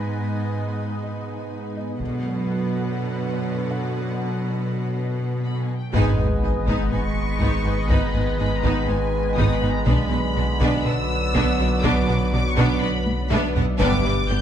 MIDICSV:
0, 0, Header, 1, 13, 480
1, 0, Start_track
1, 0, Tempo, 491803
1, 31, Time_signature, 4, 2, 24, 8
1, 14070, End_track
2, 0, Start_track
2, 0, Title_t, "Violin section"
2, 0, Program_c, 0, 48
2, 5307, Note_on_c, 0, 83, 54
2, 5458, Note_off_c, 0, 83, 0
2, 5480, Note_on_c, 0, 80, 50
2, 5636, Note_off_c, 0, 80, 0
2, 5636, Note_on_c, 0, 79, 52
2, 5790, Note_off_c, 0, 79, 0
2, 5791, Note_on_c, 0, 80, 83
2, 6712, Note_off_c, 0, 80, 0
2, 6748, Note_on_c, 0, 85, 103
2, 7690, Note_off_c, 0, 85, 0
2, 7702, Note_on_c, 0, 83, 78
2, 8170, Note_off_c, 0, 83, 0
2, 8182, Note_on_c, 0, 83, 88
2, 8343, Note_off_c, 0, 83, 0
2, 8348, Note_on_c, 0, 82, 81
2, 8500, Note_on_c, 0, 83, 88
2, 8510, Note_off_c, 0, 82, 0
2, 8659, Note_on_c, 0, 80, 93
2, 8666, Note_off_c, 0, 83, 0
2, 9140, Note_on_c, 0, 87, 106
2, 9145, Note_off_c, 0, 80, 0
2, 9306, Note_off_c, 0, 87, 0
2, 9313, Note_on_c, 0, 83, 94
2, 9467, Note_on_c, 0, 82, 93
2, 9472, Note_off_c, 0, 83, 0
2, 9629, Note_off_c, 0, 82, 0
2, 9632, Note_on_c, 0, 83, 103
2, 10573, Note_off_c, 0, 83, 0
2, 10590, Note_on_c, 0, 88, 119
2, 11551, Note_off_c, 0, 88, 0
2, 11553, Note_on_c, 0, 86, 102
2, 12011, Note_off_c, 0, 86, 0
2, 12023, Note_on_c, 0, 86, 118
2, 12181, Note_on_c, 0, 85, 110
2, 12184, Note_off_c, 0, 86, 0
2, 12346, Note_off_c, 0, 85, 0
2, 12347, Note_on_c, 0, 86, 118
2, 12501, Note_on_c, 0, 83, 105
2, 12509, Note_off_c, 0, 86, 0
2, 12986, Note_off_c, 0, 83, 0
2, 13476, Note_on_c, 0, 86, 125
2, 13920, Note_off_c, 0, 86, 0
2, 13948, Note_on_c, 0, 91, 117
2, 14070, Note_off_c, 0, 91, 0
2, 14070, End_track
3, 0, Start_track
3, 0, Title_t, "Felt piano"
3, 0, Program_c, 1, 0
3, 0, Control_c, 1, 64, 127
3, 0, Note_on_c, 1, 85, 26
3, 1009, Note_on_c, 1, 75, 36
3, 1712, Note_off_c, 1, 75, 0
3, 1726, Note_on_c, 1, 75, 44
3, 1971, Control_c, 1, 64, 0
3, 1973, Note_off_c, 1, 85, 0
3, 2123, Control_c, 1, 64, 127
3, 3120, Note_off_c, 1, 75, 0
3, 3617, Note_on_c, 1, 78, 41
3, 5025, Note_off_c, 1, 78, 0
3, 5809, Control_c, 1, 64, 0
3, 5955, Control_c, 1, 64, 127
3, 6272, Note_on_c, 1, 80, 57
3, 7672, Note_off_c, 1, 80, 0
3, 7715, Note_on_c, 1, 94, 53
3, 9114, Note_off_c, 1, 94, 0
3, 9650, Control_c, 1, 64, 0
3, 9797, Control_c, 1, 64, 127
3, 9886, Note_on_c, 1, 83, 62
3, 11279, Note_off_c, 1, 83, 0
3, 12985, Note_on_c, 1, 76, 87
3, 13459, Note_on_c, 1, 71, 67
3, 13461, Note_on_c, 1, 59, 58
3, 13491, Control_c, 1, 64, 0
3, 13670, Control_c, 1, 64, 127
3, 14070, Note_off_c, 1, 59, 0
3, 14070, Note_off_c, 1, 71, 0
3, 14070, Note_off_c, 1, 76, 0
3, 14070, End_track
4, 0, Start_track
4, 0, Title_t, "Violin section"
4, 0, Program_c, 2, 48
4, 0, Note_on_c, 2, 71, 35
4, 0, Note_on_c, 2, 80, 33
4, 1915, Note_off_c, 2, 71, 0
4, 1915, Note_off_c, 2, 80, 0
4, 1954, Note_on_c, 2, 71, 52
4, 1955, Note_on_c, 2, 78, 51
4, 5559, Note_off_c, 2, 71, 0
4, 5559, Note_off_c, 2, 78, 0
4, 5793, Note_on_c, 2, 71, 93
4, 5796, Note_on_c, 2, 63, 87
4, 6015, Note_off_c, 2, 71, 0
4, 6017, Note_off_c, 2, 63, 0
4, 6032, Note_on_c, 2, 80, 43
4, 6038, Note_on_c, 2, 71, 47
4, 6110, Note_off_c, 2, 80, 0
4, 6116, Note_off_c, 2, 71, 0
4, 6287, Note_on_c, 2, 68, 49
4, 6288, Note_on_c, 2, 75, 49
4, 6365, Note_off_c, 2, 68, 0
4, 6366, Note_off_c, 2, 75, 0
4, 6518, Note_on_c, 2, 63, 77
4, 6520, Note_on_c, 2, 71, 68
4, 6738, Note_off_c, 2, 63, 0
4, 6739, Note_off_c, 2, 71, 0
4, 6752, Note_on_c, 2, 71, 57
4, 6755, Note_on_c, 2, 80, 48
4, 6831, Note_off_c, 2, 71, 0
4, 6833, Note_off_c, 2, 80, 0
4, 7235, Note_on_c, 2, 71, 63
4, 7236, Note_on_c, 2, 63, 62
4, 7457, Note_off_c, 2, 63, 0
4, 7457, Note_off_c, 2, 71, 0
4, 7469, Note_on_c, 2, 80, 57
4, 7471, Note_on_c, 2, 71, 58
4, 7547, Note_off_c, 2, 80, 0
4, 7549, Note_off_c, 2, 71, 0
4, 7708, Note_on_c, 2, 63, 71
4, 7713, Note_on_c, 2, 71, 77
4, 7933, Note_off_c, 2, 63, 0
4, 7935, Note_off_c, 2, 71, 0
4, 7949, Note_on_c, 2, 71, 52
4, 7951, Note_on_c, 2, 80, 52
4, 8027, Note_off_c, 2, 71, 0
4, 8029, Note_off_c, 2, 80, 0
4, 8191, Note_on_c, 2, 75, 60
4, 8192, Note_on_c, 2, 68, 58
4, 8269, Note_off_c, 2, 75, 0
4, 8270, Note_off_c, 2, 68, 0
4, 8430, Note_on_c, 2, 63, 82
4, 8430, Note_on_c, 2, 71, 71
4, 8654, Note_off_c, 2, 63, 0
4, 8654, Note_off_c, 2, 71, 0
4, 8672, Note_on_c, 2, 71, 62
4, 8677, Note_on_c, 2, 80, 56
4, 8750, Note_off_c, 2, 71, 0
4, 8755, Note_off_c, 2, 80, 0
4, 9156, Note_on_c, 2, 71, 74
4, 9157, Note_on_c, 2, 63, 69
4, 9377, Note_off_c, 2, 71, 0
4, 9378, Note_off_c, 2, 63, 0
4, 9393, Note_on_c, 2, 71, 65
4, 9396, Note_on_c, 2, 80, 67
4, 9471, Note_off_c, 2, 71, 0
4, 9474, Note_off_c, 2, 80, 0
4, 9624, Note_on_c, 2, 71, 76
4, 9628, Note_on_c, 2, 62, 80
4, 9851, Note_off_c, 2, 71, 0
4, 9853, Note_off_c, 2, 62, 0
4, 9873, Note_on_c, 2, 71, 56
4, 9877, Note_on_c, 2, 78, 53
4, 9951, Note_off_c, 2, 71, 0
4, 9955, Note_off_c, 2, 78, 0
4, 10111, Note_on_c, 2, 66, 59
4, 10113, Note_on_c, 2, 74, 61
4, 10189, Note_off_c, 2, 66, 0
4, 10191, Note_off_c, 2, 74, 0
4, 10352, Note_on_c, 2, 62, 85
4, 10356, Note_on_c, 2, 71, 93
4, 10575, Note_off_c, 2, 62, 0
4, 10577, Note_off_c, 2, 71, 0
4, 10593, Note_on_c, 2, 78, 71
4, 10595, Note_on_c, 2, 71, 61
4, 10671, Note_off_c, 2, 78, 0
4, 10673, Note_off_c, 2, 71, 0
4, 11074, Note_on_c, 2, 71, 88
4, 11076, Note_on_c, 2, 62, 82
4, 11296, Note_off_c, 2, 71, 0
4, 11297, Note_off_c, 2, 62, 0
4, 11312, Note_on_c, 2, 78, 75
4, 11316, Note_on_c, 2, 71, 75
4, 11390, Note_off_c, 2, 78, 0
4, 11394, Note_off_c, 2, 71, 0
4, 11551, Note_on_c, 2, 62, 96
4, 11552, Note_on_c, 2, 71, 88
4, 11774, Note_off_c, 2, 62, 0
4, 11775, Note_off_c, 2, 71, 0
4, 11797, Note_on_c, 2, 78, 67
4, 11799, Note_on_c, 2, 71, 70
4, 11875, Note_off_c, 2, 78, 0
4, 11877, Note_off_c, 2, 71, 0
4, 12033, Note_on_c, 2, 66, 67
4, 12033, Note_on_c, 2, 74, 70
4, 12111, Note_off_c, 2, 66, 0
4, 12111, Note_off_c, 2, 74, 0
4, 12270, Note_on_c, 2, 62, 97
4, 12271, Note_on_c, 2, 71, 91
4, 12494, Note_off_c, 2, 62, 0
4, 12495, Note_off_c, 2, 71, 0
4, 12516, Note_on_c, 2, 71, 80
4, 12516, Note_on_c, 2, 78, 78
4, 12594, Note_off_c, 2, 71, 0
4, 12594, Note_off_c, 2, 78, 0
4, 12991, Note_on_c, 2, 62, 102
4, 12991, Note_on_c, 2, 71, 90
4, 13214, Note_off_c, 2, 71, 0
4, 13215, Note_off_c, 2, 62, 0
4, 13232, Note_on_c, 2, 78, 79
4, 13236, Note_on_c, 2, 71, 77
4, 13311, Note_off_c, 2, 78, 0
4, 13314, Note_off_c, 2, 71, 0
4, 13464, Note_on_c, 2, 62, 110
4, 13467, Note_on_c, 2, 71, 98
4, 13691, Note_off_c, 2, 62, 0
4, 13692, Note_off_c, 2, 71, 0
4, 13710, Note_on_c, 2, 79, 68
4, 13714, Note_on_c, 2, 71, 71
4, 13788, Note_off_c, 2, 79, 0
4, 13792, Note_off_c, 2, 71, 0
4, 13953, Note_on_c, 2, 74, 77
4, 13955, Note_on_c, 2, 67, 85
4, 14031, Note_off_c, 2, 74, 0
4, 14033, Note_off_c, 2, 67, 0
4, 14070, End_track
5, 0, Start_track
5, 0, Title_t, "French horn section"
5, 0, Program_c, 3, 60
5, 5783, Note_on_c, 3, 71, 90
5, 5786, Note_on_c, 3, 59, 81
5, 9588, Note_off_c, 3, 71, 0
5, 9590, Note_off_c, 3, 59, 0
5, 9628, Note_on_c, 3, 59, 73
5, 9634, Note_on_c, 3, 71, 74
5, 13298, Note_off_c, 3, 59, 0
5, 13298, Note_off_c, 3, 71, 0
5, 13464, Note_on_c, 3, 59, 97
5, 13465, Note_on_c, 3, 71, 93
5, 13634, Note_off_c, 3, 59, 0
5, 13635, Note_off_c, 3, 71, 0
5, 14070, End_track
6, 0, Start_track
6, 0, Title_t, "Analog synth pad"
6, 0, Program_c, 4, 89
6, 0, Note_on_c, 4, 56, 51
6, 0, Note_on_c, 4, 59, 50
6, 0, Note_on_c, 4, 71, 47
6, 0, Note_on_c, 4, 75, 51
6, 1915, Note_off_c, 4, 71, 0
6, 1919, Note_off_c, 4, 59, 0
6, 1919, Note_off_c, 4, 75, 0
6, 1920, Note_off_c, 4, 56, 0
6, 1940, Note_on_c, 4, 54, 58
6, 1941, Note_on_c, 4, 71, 55
6, 1944, Note_on_c, 4, 78, 53
6, 1948, Note_on_c, 4, 59, 57
6, 5747, Note_off_c, 4, 71, 0
6, 5751, Note_off_c, 4, 59, 0
6, 5786, Note_off_c, 4, 54, 0
6, 5787, Note_on_c, 4, 75, 95
6, 5788, Note_off_c, 4, 78, 0
6, 5789, Note_on_c, 4, 56, 92
6, 5794, Note_on_c, 4, 71, 91
6, 5798, Note_on_c, 4, 59, 97
6, 9590, Note_off_c, 4, 75, 0
6, 9591, Note_off_c, 4, 56, 0
6, 9594, Note_off_c, 4, 71, 0
6, 9596, Note_off_c, 4, 59, 0
6, 9632, Note_on_c, 4, 54, 80
6, 9634, Note_on_c, 4, 59, 78
6, 9634, Note_on_c, 4, 71, 78
6, 9637, Note_on_c, 4, 74, 72
6, 13434, Note_off_c, 4, 59, 0
6, 13434, Note_off_c, 4, 71, 0
6, 13457, Note_off_c, 4, 74, 0
6, 13465, Note_on_c, 4, 47, 82
6, 13465, Note_on_c, 4, 55, 79
6, 13469, Note_on_c, 4, 74, 81
6, 13470, Note_on_c, 4, 67, 88
6, 13472, Note_off_c, 4, 54, 0
6, 14070, Note_off_c, 4, 47, 0
6, 14070, Note_off_c, 4, 55, 0
6, 14070, Note_off_c, 4, 67, 0
6, 14070, Note_off_c, 4, 74, 0
6, 14070, End_track
7, 0, Start_track
7, 0, Title_t, "Viola section"
7, 0, Program_c, 5, 48
7, 0, Note_on_c, 5, 59, 33
7, 0, Note_on_c, 5, 63, 30
7, 1915, Note_off_c, 5, 59, 0
7, 1915, Note_off_c, 5, 63, 0
7, 1953, Note_on_c, 5, 50, 51
7, 1955, Note_on_c, 5, 59, 49
7, 5559, Note_off_c, 5, 59, 0
7, 5597, Note_off_c, 5, 50, 0
7, 5791, Note_on_c, 5, 59, 88
7, 5792, Note_on_c, 5, 63, 84
7, 6014, Note_off_c, 5, 59, 0
7, 6015, Note_off_c, 5, 63, 0
7, 6029, Note_on_c, 5, 59, 46
7, 6033, Note_on_c, 5, 63, 46
7, 6108, Note_off_c, 5, 59, 0
7, 6111, Note_off_c, 5, 63, 0
7, 6269, Note_on_c, 5, 59, 48
7, 6270, Note_on_c, 5, 63, 55
7, 6347, Note_off_c, 5, 59, 0
7, 6348, Note_off_c, 5, 63, 0
7, 6506, Note_on_c, 5, 59, 69
7, 6511, Note_on_c, 5, 63, 72
7, 6732, Note_off_c, 5, 59, 0
7, 6734, Note_off_c, 5, 63, 0
7, 6746, Note_on_c, 5, 63, 52
7, 6747, Note_on_c, 5, 59, 52
7, 6824, Note_off_c, 5, 63, 0
7, 6826, Note_off_c, 5, 59, 0
7, 7225, Note_on_c, 5, 59, 75
7, 7225, Note_on_c, 5, 63, 74
7, 7451, Note_off_c, 5, 59, 0
7, 7451, Note_off_c, 5, 63, 0
7, 7472, Note_on_c, 5, 63, 57
7, 7473, Note_on_c, 5, 59, 61
7, 7550, Note_off_c, 5, 63, 0
7, 7551, Note_off_c, 5, 59, 0
7, 7709, Note_on_c, 5, 59, 69
7, 7709, Note_on_c, 5, 63, 77
7, 7933, Note_off_c, 5, 59, 0
7, 7933, Note_off_c, 5, 63, 0
7, 7951, Note_on_c, 5, 59, 48
7, 7955, Note_on_c, 5, 63, 46
7, 8029, Note_off_c, 5, 59, 0
7, 8034, Note_off_c, 5, 63, 0
7, 8191, Note_on_c, 5, 59, 61
7, 8195, Note_on_c, 5, 63, 60
7, 8269, Note_off_c, 5, 59, 0
7, 8273, Note_off_c, 5, 63, 0
7, 8433, Note_on_c, 5, 63, 76
7, 8435, Note_on_c, 5, 59, 80
7, 8655, Note_off_c, 5, 63, 0
7, 8656, Note_off_c, 5, 59, 0
7, 8667, Note_on_c, 5, 59, 52
7, 8667, Note_on_c, 5, 63, 57
7, 8745, Note_off_c, 5, 59, 0
7, 8745, Note_off_c, 5, 63, 0
7, 9150, Note_on_c, 5, 59, 89
7, 9152, Note_on_c, 5, 63, 86
7, 9374, Note_off_c, 5, 59, 0
7, 9375, Note_off_c, 5, 63, 0
7, 9398, Note_on_c, 5, 63, 66
7, 9399, Note_on_c, 5, 59, 67
7, 9476, Note_off_c, 5, 63, 0
7, 9477, Note_off_c, 5, 59, 0
7, 9630, Note_on_c, 5, 62, 75
7, 9634, Note_on_c, 5, 59, 80
7, 9854, Note_off_c, 5, 62, 0
7, 9856, Note_off_c, 5, 59, 0
7, 9876, Note_on_c, 5, 59, 53
7, 9878, Note_on_c, 5, 62, 51
7, 9954, Note_off_c, 5, 59, 0
7, 9956, Note_off_c, 5, 62, 0
7, 10119, Note_on_c, 5, 62, 68
7, 10121, Note_on_c, 5, 59, 71
7, 10197, Note_off_c, 5, 62, 0
7, 10199, Note_off_c, 5, 59, 0
7, 10355, Note_on_c, 5, 62, 91
7, 10357, Note_on_c, 5, 59, 88
7, 10576, Note_off_c, 5, 62, 0
7, 10577, Note_off_c, 5, 59, 0
7, 10593, Note_on_c, 5, 59, 62
7, 10593, Note_on_c, 5, 62, 70
7, 10671, Note_off_c, 5, 59, 0
7, 10671, Note_off_c, 5, 62, 0
7, 11075, Note_on_c, 5, 59, 99
7, 11076, Note_on_c, 5, 62, 92
7, 11297, Note_off_c, 5, 59, 0
7, 11297, Note_off_c, 5, 62, 0
7, 11315, Note_on_c, 5, 62, 80
7, 11317, Note_on_c, 5, 59, 73
7, 11393, Note_off_c, 5, 62, 0
7, 11395, Note_off_c, 5, 59, 0
7, 11549, Note_on_c, 5, 62, 101
7, 11551, Note_on_c, 5, 59, 94
7, 11773, Note_off_c, 5, 62, 0
7, 11774, Note_off_c, 5, 59, 0
7, 11794, Note_on_c, 5, 59, 58
7, 11795, Note_on_c, 5, 62, 62
7, 11872, Note_off_c, 5, 59, 0
7, 11873, Note_off_c, 5, 62, 0
7, 12035, Note_on_c, 5, 62, 65
7, 12040, Note_on_c, 5, 59, 76
7, 12114, Note_off_c, 5, 62, 0
7, 12118, Note_off_c, 5, 59, 0
7, 12276, Note_on_c, 5, 59, 96
7, 12278, Note_on_c, 5, 62, 101
7, 12497, Note_off_c, 5, 59, 0
7, 12498, Note_off_c, 5, 62, 0
7, 12516, Note_on_c, 5, 62, 76
7, 12517, Note_on_c, 5, 59, 80
7, 12594, Note_off_c, 5, 62, 0
7, 12595, Note_off_c, 5, 59, 0
7, 12998, Note_on_c, 5, 62, 95
7, 12999, Note_on_c, 5, 59, 106
7, 13218, Note_off_c, 5, 62, 0
7, 13219, Note_off_c, 5, 59, 0
7, 13236, Note_on_c, 5, 59, 90
7, 13238, Note_on_c, 5, 62, 85
7, 13314, Note_off_c, 5, 59, 0
7, 13316, Note_off_c, 5, 62, 0
7, 13477, Note_on_c, 5, 62, 93
7, 13478, Note_on_c, 5, 59, 96
7, 13698, Note_off_c, 5, 59, 0
7, 13698, Note_off_c, 5, 62, 0
7, 13714, Note_on_c, 5, 59, 68
7, 13716, Note_on_c, 5, 62, 67
7, 13792, Note_off_c, 5, 59, 0
7, 13794, Note_off_c, 5, 62, 0
7, 13956, Note_on_c, 5, 62, 73
7, 13957, Note_on_c, 5, 59, 86
7, 14034, Note_off_c, 5, 62, 0
7, 14035, Note_off_c, 5, 59, 0
7, 14070, End_track
8, 0, Start_track
8, 0, Title_t, "Trombone section"
8, 0, Program_c, 6, 61
8, 5792, Note_on_c, 6, 51, 83
8, 5794, Note_on_c, 6, 56, 87
8, 9593, Note_off_c, 6, 51, 0
8, 9628, Note_on_c, 6, 50, 83
8, 10553, Note_off_c, 6, 56, 0
8, 10587, Note_on_c, 6, 54, 75
8, 13305, Note_off_c, 6, 50, 0
8, 13305, Note_off_c, 6, 54, 0
8, 13471, Note_on_c, 6, 50, 92
8, 13474, Note_on_c, 6, 55, 89
8, 13639, Note_off_c, 6, 50, 0
8, 13641, Note_off_c, 6, 55, 0
8, 14070, End_track
9, 0, Start_track
9, 0, Title_t, "Cello section"
9, 0, Program_c, 7, 48
9, 0, Note_on_c, 7, 44, 35
9, 1908, Note_off_c, 7, 44, 0
9, 1944, Note_on_c, 7, 47, 53
9, 5553, Note_off_c, 7, 47, 0
9, 5793, Note_on_c, 7, 44, 86
9, 6015, Note_off_c, 7, 44, 0
9, 6034, Note_on_c, 7, 44, 55
9, 6112, Note_off_c, 7, 44, 0
9, 6282, Note_on_c, 7, 44, 53
9, 6360, Note_off_c, 7, 44, 0
9, 6515, Note_on_c, 7, 44, 68
9, 6593, Note_off_c, 7, 44, 0
9, 6750, Note_on_c, 7, 44, 50
9, 6828, Note_off_c, 7, 44, 0
9, 7234, Note_on_c, 7, 44, 73
9, 7312, Note_off_c, 7, 44, 0
9, 7472, Note_on_c, 7, 44, 56
9, 7550, Note_off_c, 7, 44, 0
9, 7706, Note_on_c, 7, 44, 77
9, 7784, Note_off_c, 7, 44, 0
9, 7952, Note_on_c, 7, 44, 59
9, 8030, Note_off_c, 7, 44, 0
9, 8198, Note_on_c, 7, 44, 62
9, 8276, Note_off_c, 7, 44, 0
9, 8429, Note_on_c, 7, 44, 82
9, 8507, Note_off_c, 7, 44, 0
9, 8666, Note_on_c, 7, 44, 60
9, 8744, Note_off_c, 7, 44, 0
9, 9148, Note_on_c, 7, 44, 84
9, 9226, Note_off_c, 7, 44, 0
9, 9382, Note_on_c, 7, 44, 59
9, 9460, Note_off_c, 7, 44, 0
9, 9627, Note_on_c, 7, 47, 87
9, 9705, Note_off_c, 7, 47, 0
9, 9859, Note_on_c, 7, 47, 69
9, 9937, Note_off_c, 7, 47, 0
9, 10105, Note_on_c, 7, 47, 67
9, 10183, Note_off_c, 7, 47, 0
9, 10349, Note_on_c, 7, 47, 91
9, 10427, Note_off_c, 7, 47, 0
9, 10590, Note_on_c, 7, 47, 69
9, 10669, Note_off_c, 7, 47, 0
9, 11066, Note_on_c, 7, 47, 95
9, 11144, Note_off_c, 7, 47, 0
9, 11317, Note_on_c, 7, 47, 74
9, 11395, Note_off_c, 7, 47, 0
9, 11552, Note_on_c, 7, 47, 100
9, 11630, Note_off_c, 7, 47, 0
9, 11792, Note_on_c, 7, 47, 73
9, 11870, Note_off_c, 7, 47, 0
9, 12027, Note_on_c, 7, 47, 76
9, 12105, Note_off_c, 7, 47, 0
9, 12265, Note_on_c, 7, 47, 101
9, 12343, Note_off_c, 7, 47, 0
9, 12504, Note_on_c, 7, 47, 71
9, 12583, Note_off_c, 7, 47, 0
9, 12979, Note_on_c, 7, 47, 96
9, 13057, Note_off_c, 7, 47, 0
9, 13226, Note_on_c, 7, 47, 72
9, 13304, Note_off_c, 7, 47, 0
9, 13459, Note_on_c, 7, 43, 104
9, 13537, Note_off_c, 7, 43, 0
9, 13706, Note_on_c, 7, 43, 84
9, 13784, Note_off_c, 7, 43, 0
9, 13945, Note_on_c, 7, 43, 78
9, 14023, Note_off_c, 7, 43, 0
9, 14070, End_track
10, 0, Start_track
10, 0, Title_t, "Double bass section"
10, 0, Program_c, 8, 48
10, 5791, Note_on_c, 8, 32, 89
10, 6014, Note_off_c, 8, 32, 0
10, 6036, Note_on_c, 8, 32, 49
10, 6114, Note_off_c, 8, 32, 0
10, 6270, Note_on_c, 8, 32, 51
10, 6348, Note_off_c, 8, 32, 0
10, 6509, Note_on_c, 8, 32, 73
10, 6587, Note_off_c, 8, 32, 0
10, 6750, Note_on_c, 8, 32, 53
10, 6828, Note_off_c, 8, 32, 0
10, 7226, Note_on_c, 8, 32, 81
10, 7304, Note_off_c, 8, 32, 0
10, 7467, Note_on_c, 8, 32, 51
10, 7545, Note_off_c, 8, 32, 0
10, 7707, Note_on_c, 8, 32, 76
10, 7785, Note_off_c, 8, 32, 0
10, 7942, Note_on_c, 8, 32, 52
10, 8020, Note_off_c, 8, 32, 0
10, 8184, Note_on_c, 8, 32, 56
10, 8263, Note_off_c, 8, 32, 0
10, 8426, Note_on_c, 8, 32, 84
10, 8505, Note_off_c, 8, 32, 0
10, 8669, Note_on_c, 8, 32, 63
10, 8747, Note_off_c, 8, 32, 0
10, 9154, Note_on_c, 8, 32, 84
10, 9232, Note_off_c, 8, 32, 0
10, 9395, Note_on_c, 8, 32, 58
10, 9473, Note_off_c, 8, 32, 0
10, 9629, Note_on_c, 8, 35, 90
10, 9707, Note_off_c, 8, 35, 0
10, 9875, Note_on_c, 8, 35, 61
10, 9953, Note_off_c, 8, 35, 0
10, 10115, Note_on_c, 8, 35, 67
10, 10193, Note_off_c, 8, 35, 0
10, 10350, Note_on_c, 8, 35, 90
10, 10428, Note_off_c, 8, 35, 0
10, 10599, Note_on_c, 8, 35, 66
10, 10677, Note_off_c, 8, 35, 0
10, 11070, Note_on_c, 8, 35, 98
10, 11148, Note_off_c, 8, 35, 0
10, 11321, Note_on_c, 8, 35, 71
10, 11399, Note_off_c, 8, 35, 0
10, 11553, Note_on_c, 8, 35, 98
10, 11631, Note_off_c, 8, 35, 0
10, 11795, Note_on_c, 8, 35, 66
10, 11874, Note_off_c, 8, 35, 0
10, 12034, Note_on_c, 8, 35, 75
10, 12113, Note_off_c, 8, 35, 0
10, 12267, Note_on_c, 8, 35, 103
10, 12345, Note_off_c, 8, 35, 0
10, 12508, Note_on_c, 8, 35, 69
10, 12586, Note_off_c, 8, 35, 0
10, 12991, Note_on_c, 8, 35, 102
10, 13069, Note_off_c, 8, 35, 0
10, 13236, Note_on_c, 8, 35, 70
10, 13314, Note_off_c, 8, 35, 0
10, 13468, Note_on_c, 8, 31, 115
10, 13546, Note_off_c, 8, 31, 0
10, 13699, Note_on_c, 8, 31, 70
10, 13777, Note_off_c, 8, 31, 0
10, 13944, Note_on_c, 8, 31, 76
10, 14022, Note_off_c, 8, 31, 0
10, 14070, End_track
11, 0, Start_track
11, 0, Title_t, "Sub bass"
11, 0, Program_c, 10, 38
11, 5794, Note_on_c, 10, 32, 74
11, 9632, Note_on_c, 10, 35, 77
11, 9647, Note_off_c, 10, 32, 0
11, 13468, Note_on_c, 10, 31, 85
11, 13483, Note_off_c, 10, 35, 0
11, 14070, Note_off_c, 10, 31, 0
11, 14070, End_track
12, 0, Start_track
12, 0, Title_t, "Sub drop"
12, 0, Program_c, 11, 103
12, 5790, Note_on_c, 11, 60, 64
12, 7711, Note_off_c, 11, 60, 0
12, 14070, End_track
13, 0, Start_track
13, 0, Title_t, "Taiko and cinematic ensemble drums"
13, 1955, Note_on_c, 9, 41, 49
13, 2053, Note_off_c, 9, 41, 0
13, 5793, Note_on_c, 9, 41, 90
13, 5890, Note_off_c, 9, 41, 0
13, 6514, Note_on_c, 9, 41, 77
13, 6612, Note_off_c, 9, 41, 0
13, 7229, Note_on_c, 9, 41, 80
13, 7327, Note_off_c, 9, 41, 0
13, 7711, Note_on_c, 9, 41, 95
13, 7809, Note_off_c, 9, 41, 0
13, 8435, Note_on_c, 9, 41, 82
13, 8533, Note_off_c, 9, 41, 0
13, 9148, Note_on_c, 9, 41, 79
13, 9246, Note_off_c, 9, 41, 0
13, 9631, Note_on_c, 9, 41, 96
13, 9728, Note_off_c, 9, 41, 0
13, 10359, Note_on_c, 9, 41, 86
13, 10456, Note_off_c, 9, 41, 0
13, 11072, Note_on_c, 9, 41, 84
13, 11170, Note_off_c, 9, 41, 0
13, 11554, Note_on_c, 9, 41, 101
13, 11651, Note_off_c, 9, 41, 0
13, 12271, Note_on_c, 9, 41, 85
13, 12368, Note_off_c, 9, 41, 0
13, 12750, Note_on_c, 9, 48, 90
13, 12847, Note_off_c, 9, 48, 0
13, 12993, Note_on_c, 9, 48, 91
13, 13090, Note_off_c, 9, 48, 0
13, 13233, Note_on_c, 9, 43, 88
13, 13330, Note_off_c, 9, 43, 0
13, 13474, Note_on_c, 9, 41, 104
13, 13572, Note_off_c, 9, 41, 0
13, 14070, End_track
0, 0, End_of_file